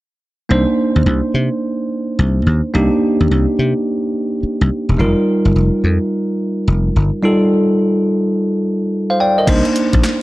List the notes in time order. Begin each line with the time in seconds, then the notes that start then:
0.49 C2 A#3 D4 D#4 C5
0.96 D#2
1.06 C2
1.34 C3
2.19 C2
2.46 D#2
2.74 C2 A#3 D4 D#4 G4
3.20 D#2
3.31 C2
3.59 C3
4.43 muted slap bass stroke
4.61 C2
4.89 E1
4.98 F1 G3 D#4 F4 A#4
5.45 G1
5.56 F1
5.84 F2
6.68 F1
6.96 G1
7.23 G3 D#4 F4 A4
9.10 C5 F5
9.20 D5 G5
9.38 A#4 D#5
9.47 C2 A#3 D4 D#4 C5, kick, closed hi-hat, crash
9.65 closed hi-hat
9.76 closed hi-hat
9.93 A#1, kick, closed hi-hat
10.03 snare, clap, closed hi-hat